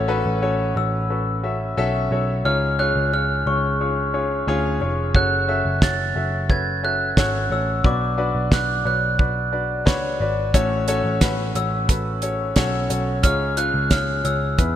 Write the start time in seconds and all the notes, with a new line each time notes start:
Already playing: A1 A2 A3 C#4 F#4 A4 C#5
0.08 C#4 F#4 A4 B4
0.26 A1
0.42 C#4 F#4 A4 C#5
0.76 A1 C#4 F#4 A4 C#5 E6
1.10 C#4 F#4 A4 B4
1.43 C#4 F#4 A4 E5
1.77 B1 C#4 F#4 A4 E5
2.11 B1 C#4 F#4 A4 C#5
2.45 C#2 G#2 C#4 F4 G#4 C#5 F6
2.79 C#4 F4 G#4 C#5 F#6
2.96 C#2
3.13 C#4 F4 G#4 C#5 F6
3.46 C#2 C#4 F4 G#4 C#5 C#6
3.81 C#4 F4 G#4 C#5
4.13 C#4 F4 G#4 C#5
4.47 D2 C#4 F4 G#4 C#5
4.81 F1 C#4 F4 G#4 C#5
5.15 F#1 C#3 C#4 F#4 A4 C#5 F#6, kick
5.48 C#4 F#4 A4 E5
5.65 F#1
5.82 C#4 F#4 A4 C#5 A6, kick, snare
6.16 F#1 C#4 F#4 A4 E5
6.49 C#4 F#4 A4 B4 G#6, kick
6.83 C#4 F#4 A4 E5 F#6
7.17 G#1 C#4 F#4 A4 C#5, kick, snare
7.50 A1 C#4 F#4 A4 C#5 E6
7.84 B1 B2 F#3 D4 F#4 B4 D5 D6, kick
8.17 D4 F#4 B4 D5
8.35 B1
8.51 D4 F#4 B4 D5 F#6, kick, snare
8.85 B1 D4 F#4 B4 C#5 F#6
9.18 D4 F#4 B4 D5, kick
9.52 D4 F#4 B4 D5
9.85 C#2 D4 F#4 B4 C#5, kick, snare
10.20 G#1 D4 F#4 B4 D5
10.54 A1 A2 A3 C#4 F#4 A4 C#5, kick, closed hi-hat
10.88 C#4 F#4 A4 C#5, closed hi-hat
11.04 A1
11.21 C#4 F#4 A4 B4, kick, snare, closed hi-hat
11.55 A1 C#4 F#4 A4 C#5 E6, closed hi-hat
11.89 C#4 F#4 A4 B4, kick, closed hi-hat
12.22 C#4 F#4 A4 C#5, closed hi-hat
12.56 B1 C#4 F#4 A4 C#5, kick, snare, closed hi-hat
12.90 B1 C#4 F#4 A4 C#5, closed hi-hat
13.23 C#2 G#2 C#4 F4 G#4 C#5 F6, kick, closed hi-hat
13.57 C#4 F4 G#4 C#5 F#6, closed hi-hat
13.74 C#2
13.91 C#4 F4 G#4 C#5 F6, kick, snare, closed hi-hat
14.24 C#2 C#4 F4 G#4 C#5 E6, closed hi-hat
14.58 E2 B2 B3 E4 G#4 B4, kick, closed hi-hat